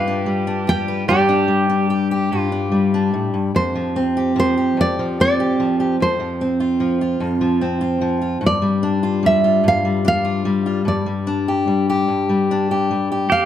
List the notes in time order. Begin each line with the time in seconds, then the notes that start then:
Already playing: G2 G3 F4 G4 B4 F5
0.07 D4
0.26 G3
0.47 D4
0.67 F4 G5
0.88 B4
1.08 G2 G3 D4 G4 D5
1.29 D4
1.48 G3
1.70 D4
1.90 G4
2.11 G4
2.32 G2 G4
2.40 F4
2.52 D4
2.72 G3
2.94 D4
3.14 A2
3.34 G2
3.55 F2 C5
3.75 F3
3.96 C4
4.17 G4
4.36 F3 C5
4.58 G4
4.77 F2 D5
4.99 F3
5.20 C4 D5
5.40 G4
5.60 F3
5.80 G4
6.00 F2 C5
6.20 F3
6.41 C4
6.60 F4
6.80 F3
7.01 F4
7.20 F2
7.41 F3
7.61 C4
7.81 F4
8.01 F3
8.22 F4
8.41 G2
8.46 D5
8.62 G3
8.83 D4
9.03 F4
9.23 G3 E5
9.44 F4
9.64 G2
9.68 F5
9.85 G3
10.05 D4 F5
10.25 F4
10.45 G3
10.66 F4
10.85 G2 D5
11.06 G3
11.27 D4
11.48 G4
11.67 G3
11.90 G4
12.08 G2
12.29 G3
12.51 D4
12.71 G4
12.91 G3
13.12 G4
13.30 F2 G4 F5